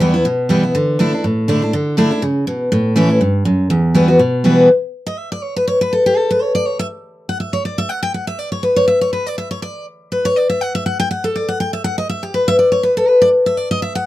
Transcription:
0.00 0.23 E2 medium
0.00 0.13 E3 loud
0.00 0.14 G3 loud
0.00 0.14 B3 loud
0.00 0.13 E4 medium
0.14 0.25 B3 medium
0.14 0.25 E4 medium
0.25 0.72 B2 medium
0.49 0.62 E3 medium
0.49 0.63 G3 medium
0.49 0.63 B3 medium
0.49 0.62 E4 medium
0.63 0.75 B3 soft
0.63 0.74 E4 medium
0.75 0.98 D3 medium
0.99 1.12 D3 medium
0.99 1.12 A3 medium
0.99 1.13 D4 loud
0.99 1.11 E4 loud
1.13 1.24 D4 medium
1.13 1.23 E4 medium
1.24 1.71 A2 medium
1.48 1.61 D3 medium
1.48 1.61 A3 medium
1.48 1.62 D4 medium
1.48 1.61 E4 medium
1.62 1.73 D4 medium
1.62 1.73 E4 medium
1.73 1.96 D3 loud
1.97 2.10 D3 medium
1.97 2.11 A3 loud
1.97 2.11 D4 loud
1.97 2.09 E4 loud
2.11 2.22 D4 medium
2.11 2.22 E4 medium
2.22 2.46 C#3 medium
2.47 2.71 B2 medium
2.72 3.19 A2 loud
2.96 3.09 E3 loud
2.96 3.09 A3 medium
2.96 3.09 C#4 loud
2.96 3.08 E4 loud
3.09 3.21 C#4 soft
3.09 3.20 E4 medium
3.21 3.44 G2 medium
3.45 3.69 F#2 medium
3.70 4.17 E2 medium
3.95 4.08 E3 medium
3.95 4.08 G3 medium
3.95 4.08 B3 medium
3.95 4.07 F#4 loud
4.08 4.20 B3 soft
4.08 4.19 F#4 medium
4.19 4.67 B2 medium
4.44 4.68 E3 medium
4.44 4.68 G3 medium
4.44 4.68 B3 medium
4.44 4.68 F#4 medium
5.07 5.18 D#5 medium
5.18 5.31 E5 medium
5.32 5.43 D5 loud
5.43 5.56 C#5 medium
5.56 5.67 B4 medium
5.68 5.81 C#5 loud
5.81 5.92 B4 loud
5.93 6.05 A4 medium
6.06 6.17 G4 medium
6.17 6.30 A4 medium
6.31 6.42 B4 medium
6.42 6.54 C#5 medium
6.55 6.66 D5 loud
6.66 6.79 C#5 medium
6.79 6.86 E5 loud
7.29 7.40 F#5 loud
7.40 7.53 E5 medium
7.53 7.64 C#5 medium
7.65 7.78 D5 medium
7.78 7.89 E5 loud
7.89 8.02 F#5 loud
8.03 8.14 G5 loud
8.14 8.27 F#5 medium
8.27 8.39 E5 loud
8.39 8.51 D5 medium
8.52 8.63 C#5 loud
8.63 8.76 B4 medium
8.76 8.87 C#5 loud
8.88 9.01 E5 medium
9.01 9.12 C#5 medium
9.13 9.26 B4 medium
9.26 9.37 D5 loud
9.38 9.50 E5 medium
9.51 9.62 C#5 medium
9.62 9.85 D5 medium
10.12 10.25 B4 medium
10.25 10.36 C#5 loud
10.36 10.49 D5 medium
10.50 10.61 E5 loud
10.61 10.74 F#5 loud
10.75 10.86 E5 loud
10.86 10.99 F#5 loud
11.00 11.10 G5 loud
11.11 11.24 F#5 medium
11.24 11.35 A4 medium
11.36 11.48 D5 medium
11.48 11.59 F#5 loud
11.60 11.73 G5 loud
11.73 11.84 E5 loud
11.84 11.97 F#5 loud
11.98 12.09 D#5 loud
12.09 12.22 E5 loud
12.23 12.34 G4 medium
12.34 12.47 B4 loud
12.48 12.58 E5 loud
12.59 12.71 D5 medium
12.72 12.83 C#5 medium
12.83 12.96 B4 medium
12.97 13.08 A4 loud
13.08 13.21 B4 medium
13.22 13.28 D5 loud
13.46 13.57 E5 loud
13.57 13.70 D5 loud
13.71 13.82 D#5 loud
13.82 13.95 E5 medium
13.95 14.06 F#5 loud

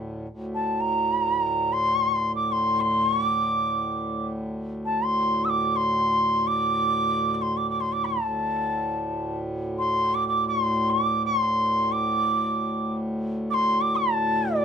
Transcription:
0.00 0.27 D2 medium
0.00 0.27 A2 medium
0.29 8.18 D2 medium
0.29 8.18 A2 medium
0.54 0.82 A5 medium
0.80 1.74 A#5 medium
1.73 2.34 C6 medium
2.35 2.53 D6 medium
2.52 2.80 C6 medium
2.80 3.07 C6 medium
3.07 3.24 C#6 medium
3.24 4.27 D6 medium
4.85 5.06 A5 medium
5.04 5.46 C6 medium
5.44 5.50 E6 medium
5.49 5.77 D6 medium
5.76 6.48 C6 medium
6.47 7.34 D6 medium
7.34 7.43 D6 medium
7.41 7.58 C6 medium
7.57 7.69 D6 medium
7.69 7.82 D6 medium
7.80 7.94 C6 medium
7.92 8.07 D6 medium
8.05 9.38 A5 medium
8.19 14.65 D2 medium
8.19 14.65 A2 medium
9.78 10.15 C6 medium
10.14 10.27 D6 medium
10.28 10.47 D6 medium
10.48 10.91 C6 medium
10.90 11.24 D6 medium
11.25 11.93 C6 medium
11.92 12.93 D6 medium
13.50 13.82 C6 medium
13.50 13.55 D6 medium
13.81 13.97 D6 medium
13.96 14.56 A5 loud
14.55 14.65 D5 medium

